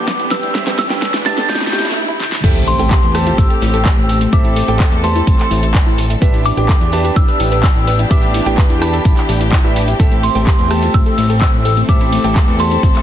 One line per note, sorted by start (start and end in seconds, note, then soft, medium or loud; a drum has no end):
0.00 0.14 A1 loud
0.00 1.93 E3 medium
0.00 1.93 B3 medium
0.00 0.52 D4 loud
0.00 1.93 D4 medium
0.00 0.52 G4 medium
0.00 1.93 G4 medium
0.00 0.52 B4 loud
0.00 0.52 A5 loud
0.00 0.33 D6 loud
0.00 1.97 G6 medium
0.00 riser medium
0.08 0.16 E4 medium
0.08 kick loud
0.08 snare medium
0.08 closed hi-hat medium
0.19 0.49 A1 medium
0.19 0.28 E4 medium
0.19 closed hi-hat soft
0.31 0.40 B4 loud
0.31 0.77 E6 loud
0.31 snare medium
0.31 open hi-hat loud
0.43 0.52 E4 medium
0.43 closed hi-hat soft
0.55 0.85 A1 loud
0.55 0.87 D4 medium
0.55 0.63 E4 medium
0.55 0.87 G4 medium
0.55 0.87 B4 medium
0.55 0.87 E5 loud
0.55 kick loud
0.55 snare loud
0.55 closed hi-hat medium
0.67 0.75 G4 medium
0.67 snare medium
0.67 closed hi-hat soft
0.67 cowbell medium
0.67 high conga medium
0.79 0.87 E4 medium
0.79 1.27 E6 loud
0.79 snare medium
0.79 open hi-hat loud
0.90 1.07 A1 medium
0.90 1.23 D4 medium
0.90 0.99 E4 medium
0.90 1.23 G4 medium
0.90 1.23 B4 medium
0.90 1.23 G5 loud
0.90 snare medium
0.90 closed hi-hat soft
1.02 1.11 B4 medium
1.02 kick loud
1.02 snare loud
1.02 closed hi-hat medium
1.14 1.44 E2 loud
1.14 1.22 E4 medium
1.14 snare medium
1.14 closed hi-hat soft
1.26 1.97 D4 loud
1.26 1.34 E4 medium
1.26 1.97 G4 medium
1.26 1.97 B4 loud
1.26 1.97 A5 loud
1.26 1.48 A6 loud
1.26 snare loud
1.26 open hi-hat loud
1.38 1.46 A4 loud
1.38 snare medium
1.38 closed hi-hat soft
1.38 high conga medium
1.49 1.58 E4 medium
1.49 1.93 G6 medium
1.49 kick loud
1.49 snare loud
1.49 closed hi-hat medium
1.55 snare medium
1.61 1.70 E4 medium
1.61 snare medium
1.61 closed hi-hat soft
1.67 snare medium
1.73 1.97 A2 loud
1.73 1.82 G4 medium
1.73 snare loud
1.73 open hi-hat loud
1.79 snare medium
1.85 1.93 E4 medium
1.85 snare medium
1.85 closed hi-hat soft
1.91 snare medium
1.97 2.05 E4 medium
2.08 2.17 E4 loud
2.20 2.29 E4 medium
2.20 snare medium
2.32 2.41 E4 medium
2.32 snare medium
2.44 2.74 A1 loud
2.44 13.02 E3 medium
2.44 6.18 A3 medium
2.44 2.76 C4 medium
2.44 6.18 C4 medium
2.44 2.76 G4 medium
2.44 4.31 G4 medium
2.44 2.52 A4 loud
2.44 2.76 A4 medium
2.44 2.76 E5 loud
2.44 kick loud
2.44 closed hi-hat medium
2.44 crash loud
2.44 tambourine medium
2.44 impact medium
2.56 2.64 A3 medium
2.56 closed hi-hat soft
2.56 tambourine soft
2.67 2.76 A3 medium
2.67 3.41 C6 loud
2.67 open hi-hat loud
2.67 tambourine medium
2.79 2.96 A1 medium
2.79 2.88 A3 medium
2.79 3.12 C4 medium
2.79 3.12 G4 medium
2.79 3.12 A4 medium
2.79 3.12 G5 medium
2.79 closed hi-hat medium
2.79 tambourine soft
2.91 3.00 G4 loud
2.91 kick loud
2.91 clap loud
2.91 closed hi-hat medium
2.91 tambourine soft
3.03 3.33 E2 loud
3.03 3.11 A3 medium
3.03 closed hi-hat soft
3.03 tambourine soft
3.15 3.23 A3 medium
3.15 4.30 C4 loud
3.15 4.30 G4 medium
3.15 4.30 A4 loud
3.15 4.30 A5 loud
3.15 cross-stick medium
3.15 open hi-hat medium
3.15 tambourine loud
3.26 3.35 F4 medium
3.26 closed hi-hat medium
3.26 tambourine soft
3.38 3.47 A1 medium
3.38 3.47 A3 medium
3.38 3.84 E6 loud
3.38 kick loud
3.38 closed hi-hat medium
3.38 tambourine medium
3.50 3.59 A4 medium
3.50 closed hi-hat soft
3.50 tambourine soft
3.62 3.92 A1 loud
3.62 3.71 A3 medium
3.62 open hi-hat loud
3.62 tambourine medium
3.74 3.82 A4 medium
3.74 closed hi-hat medium
3.74 tambourine soft
3.85 3.94 A3 medium
3.85 4.34 E6 loud
3.85 kick loud
3.85 clap loud
3.85 closed hi-hat medium
3.85 tambourine medium
3.97 4.27 A1 medium
3.97 4.06 A3 medium
3.97 tambourine soft
4.09 4.18 A4 loud
4.09 open hi-hat medium
4.09 tambourine medium
4.21 4.30 A3 medium
4.21 closed hi-hat medium
4.21 tambourine soft
4.33 4.63 A1 loud
4.33 4.41 A3 medium
4.33 4.65 C4 medium
4.33 4.65 G4 medium
4.33 6.20 A4 medium
4.33 4.65 A4 medium
4.33 4.65 E5 loud
4.33 5.00 D6 loud
4.33 kick loud
4.33 closed hi-hat medium
4.33 tambourine medium
4.44 4.53 E4 medium
4.44 closed hi-hat soft
4.44 tambourine soft
4.56 4.65 A3 medium
4.56 open hi-hat loud
4.56 tambourine loud
4.68 4.85 A1 medium
4.68 4.77 A3 medium
4.68 5.01 C4 medium
4.68 5.01 G4 medium
4.68 5.01 A4 medium
4.68 5.01 G5 loud
4.68 closed hi-hat medium
4.68 tambourine soft
4.80 4.89 A4 loud
4.80 kick loud
4.80 clap loud
4.80 closed hi-hat medium
4.80 tambourine medium
4.92 5.22 E2 loud
4.92 5.00 A3 medium
4.92 closed hi-hat soft
4.92 tambourine soft
5.04 5.12 A3 medium
5.04 6.19 C4 loud
5.04 6.19 G4 medium
5.04 6.19 A4 loud
5.04 6.19 A5 loud
5.04 5.48 C6 medium
5.04 open hi-hat medium
5.04 tambourine medium
5.15 5.24 E4 medium
5.15 closed hi-hat medium
5.15 tambourine soft
5.27 5.36 A1 medium
5.27 5.36 A3 medium
5.27 kick loud
5.27 closed hi-hat medium
5.27 tambourine soft
5.39 5.48 A3 medium
5.39 clap soft
5.39 closed hi-hat soft
5.39 tambourine soft
5.51 5.81 A1 loud
5.51 5.59 E4 medium
5.51 open hi-hat loud
5.51 tambourine loud
5.63 5.71 A3 medium
5.63 closed hi-hat medium
5.63 tambourine soft
5.75 kick loud
5.75 clap loud
5.75 closed hi-hat medium
5.75 tambourine medium
5.86 6.16 A1 medium
5.86 5.95 E4 loud
5.86 tambourine soft
5.98 6.07 A3 medium
5.98 open hi-hat loud
5.98 tambourine medium
6.10 6.19 A3 medium
6.10 closed hi-hat medium
6.10 tambourine soft
6.22 6.52 A1 loud
6.22 9.96 B3 medium
6.22 6.54 D4 medium
6.22 9.96 D4 medium
6.22 6.54 G4 medium
6.22 11.85 G4 medium
6.22 6.30 B4 loud
6.22 6.54 B4 medium
6.22 6.54 E5 loud
6.22 kick loud
6.22 closed hi-hat medium
6.22 tambourine medium
6.33 6.42 E4 medium
6.33 closed hi-hat soft
6.33 tambourine soft
6.45 6.54 E4 medium
6.45 7.18 D6 loud
6.45 open hi-hat loud
6.45 tambourine loud
6.57 6.74 A1 medium
6.57 6.90 D4 medium
6.57 6.66 E4 medium
6.57 6.90 G4 medium
6.57 6.90 B4 medium
6.57 6.90 G5 loud
6.57 closed hi-hat medium
6.57 tambourine soft
6.69 6.78 A4 medium
6.69 kick loud
6.69 clap loud
6.69 closed hi-hat medium
6.69 tambourine soft
6.81 7.11 E2 loud
6.81 6.89 E4 medium
6.81 closed hi-hat soft
6.81 tambourine soft
6.92 8.08 D4 loud
6.92 7.01 E4 medium
6.92 8.08 G4 loud
6.92 8.08 B4 loud
6.92 8.08 A5 loud
6.92 open hi-hat loud
6.92 tambourine medium
7.04 7.13 G4 medium
7.04 closed hi-hat medium
7.04 tambourine soft
7.16 7.25 A1 medium
7.16 7.25 E4 medium
7.16 7.62 E6 loud
7.16 kick loud
7.16 closed hi-hat medium
7.16 tambourine medium
7.28 7.37 B4 medium
7.28 closed hi-hat soft
7.28 tambourine soft
7.40 7.70 A1 loud
7.40 7.48 E4 medium
7.40 open hi-hat loud
7.40 tambourine loud
7.52 7.60 B4 loud
7.52 closed hi-hat soft
7.52 tambourine soft
7.63 7.72 E4 medium
7.63 8.07 E6 loud
7.63 kick loud
7.63 clap loud
7.63 closed hi-hat medium
7.63 tambourine medium
7.75 8.05 A1 medium
7.75 7.84 E4 medium
7.75 tambourine soft
7.87 7.96 B4 loud
7.87 open hi-hat loud
7.87 tambourine medium
7.99 8.08 E4 medium
7.99 closed hi-hat medium
7.99 tambourine soft
8.11 8.41 A1 loud
8.11 8.43 D4 medium
8.11 8.19 E4 medium
8.11 8.43 G4 medium
8.11 8.43 B4 medium
8.11 8.43 E5 loud
8.11 8.84 D6 loud
8.11 kick loud
8.11 closed hi-hat medium
8.11 tambourine medium
8.22 8.31 G4 loud
8.22 closed hi-hat soft
8.22 tambourine soft
8.34 8.43 E4 medium
8.34 open hi-hat loud
8.34 tambourine medium
8.46 8.63 A1 medium
8.46 8.79 D4 medium
8.46 8.55 E4 medium
8.46 8.79 G4 medium
8.46 8.79 B4 medium
8.46 8.79 G5 loud
8.46 closed hi-hat soft
8.46 tambourine soft
8.58 8.67 B4 loud
8.58 kick loud
8.58 clap loud
8.58 closed hi-hat medium
8.58 tambourine soft
8.70 9.00 E2 loud
8.70 8.78 E4 medium
8.70 closed hi-hat soft
8.70 tambourine soft
8.82 9.62 D4 loud
8.82 8.90 E4 medium
8.82 9.62 G4 loud
8.82 9.62 B4 medium
8.82 9.62 A5 loud
8.82 9.26 B5 medium
8.82 cross-stick medium
8.82 open hi-hat medium
8.82 tambourine medium
8.93 9.02 A4 medium
8.93 closed hi-hat soft
8.93 tambourine soft
9.05 9.14 A1 medium
9.05 9.14 E4 medium
9.05 kick loud
9.05 closed hi-hat medium
9.05 tambourine medium
9.17 9.26 E4 medium
9.17 clap soft
9.17 closed hi-hat soft
9.17 tambourine soft
9.29 9.59 A1 loud
9.29 9.37 G4 medium
9.29 open hi-hat loud
9.29 tambourine medium
9.41 9.49 E4 medium
9.41 closed hi-hat soft
9.41 tambourine soft
9.52 9.61 E4 medium
9.52 kick loud
9.52 clap loud
9.52 closed hi-hat medium
9.52 tambourine medium
9.64 9.94 A1 medium
9.64 9.77 D4 medium
9.64 9.73 E4 loud
9.64 9.77 G4 medium
9.64 9.77 B4 medium
9.64 9.77 E5 loud
9.64 tambourine soft
9.76 9.85 E4 medium
9.76 open hi-hat loud
9.76 tambourine medium
9.88 9.96 E4 medium
9.88 closed hi-hat medium
9.88 tambourine soft
9.99 10.30 A1 loud
9.99 13.02 A3 medium
9.99 10.32 C4 medium
9.99 13.02 C4 medium
9.99 10.32 G4 medium
9.99 10.32 A4 medium
9.99 10.08 A4 loud
9.99 10.32 E5 loud
9.99 kick loud
9.99 closed hi-hat medium
9.99 tambourine medium
10.11 10.20 A3 medium
10.11 closed hi-hat soft
10.11 tambourine soft
10.23 10.32 A3 medium
10.23 10.96 C6 loud
10.23 open hi-hat loud
10.23 ride medium
10.23 tambourine loud
10.35 10.52 A1 medium
10.35 10.44 A3 medium
10.35 10.68 C4 medium
10.35 10.68 G4 medium
10.35 10.68 A4 medium
10.35 10.68 G5 loud
10.35 closed hi-hat medium
10.35 tambourine soft
10.47 10.56 G4 medium
10.47 kick loud
10.47 clap loud
10.47 closed hi-hat medium
10.47 tambourine soft
10.59 10.89 E2 loud
10.59 10.67 A3 medium
10.59 closed hi-hat soft
10.59 tambourine soft
10.70 10.79 A3 medium
10.70 11.86 C4 loud
10.70 11.86 G4 medium
10.70 11.86 A4 medium
10.70 11.86 A5 loud
10.70 cross-stick medium
10.70 open hi-hat medium
10.70 ride medium
10.70 tambourine medium
10.82 10.91 F4 medium
10.82 closed hi-hat soft
10.82 tambourine soft
10.94 11.03 A1 medium
10.94 11.40 E6 loud
10.94 kick loud
10.94 closed hi-hat medium
10.94 tambourine medium
11.06 11.15 A4 medium
11.06 closed hi-hat soft
11.06 tambourine soft
11.18 11.48 A1 loud
11.18 11.26 A3 medium
11.18 open hi-hat loud
11.18 ride medium
11.18 tambourine medium
11.29 11.38 A4 loud
11.29 closed hi-hat soft
11.29 tambourine soft
11.41 11.50 A3 medium
11.41 11.86 E6 loud
11.41 kick loud
11.41 clap loud
11.41 closed hi-hat medium
11.41 tambourine medium
11.53 11.83 A1 medium
11.53 11.62 A3 medium
11.53 tambourine soft
11.65 11.74 A4 medium
11.65 open hi-hat medium
11.65 ride medium
11.65 tambourine medium
11.77 11.86 A3 medium
11.77 closed hi-hat medium
11.77 tambourine soft
11.88 12.19 A1 loud
11.88 11.97 A3 medium
11.88 12.21 C4 medium
11.88 12.21 G4 medium
11.88 12.21 A4 medium
11.88 13.02 A4 medium
11.88 12.21 E5 loud
11.88 12.56 D6 loud
11.88 kick loud
11.88 closed hi-hat medium
11.88 tambourine medium
12.00 12.09 E4 loud
12.00 closed hi-hat soft
12.00 tambourine soft
12.12 12.21 A3 medium
12.12 open hi-hat loud
12.12 ride medium
12.12 tambourine loud
12.24 12.41 A1 medium
12.24 12.33 A3 medium
12.24 12.57 C4 medium
12.24 12.57 G4 medium
12.24 12.57 A4 medium
12.24 12.57 G5 medium
12.24 closed hi-hat medium
12.24 tambourine soft
12.36 12.45 A4 loud
12.36 kick loud
12.36 clap loud
12.36 closed hi-hat medium
12.36 tambourine soft
12.48 12.78 E2 loud
12.48 12.56 A3 medium
12.48 closed hi-hat soft
12.48 tambourine soft
12.59 12.68 A3 medium
12.59 13.02 C4 loud
12.59 13.02 G4 medium
12.59 13.02 A4 medium
12.59 13.02 A5 loud
12.59 13.02 C6 medium
12.59 open hi-hat medium
12.59 ride medium
12.59 tambourine medium
12.71 12.80 E4 loud
12.71 closed hi-hat soft
12.71 tambourine soft
12.83 12.92 A1 loud
12.83 12.92 A3 medium
12.83 kick loud
12.83 closed hi-hat medium
12.83 tambourine medium
12.95 13.02 A3 medium
12.95 clap soft
12.95 closed hi-hat soft
12.95 tambourine soft